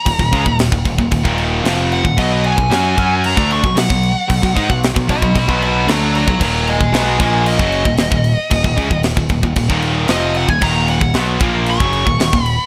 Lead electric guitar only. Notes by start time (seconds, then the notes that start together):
Already playing: A#5
1.93 F#5
2.19 D#5
2.46 G#5
3.26 A#5
3.52 C#6
3.78 F#5
5.10 D#5 B5
5.38 D#5 B5
5.63 D#5 B5
5.90 C#5 A#5
6.15 C#5 A#5
6.42 C#5 A#5
6.69 D#5 G#5
6.95 D#5 G#5
7.20 D#5 G#5
7.47 D#5
10.11 D#5
10.37 F#5
10.49 G#5
10.62 A#5
10.89 F#5
11.70 C#6
12.42 B5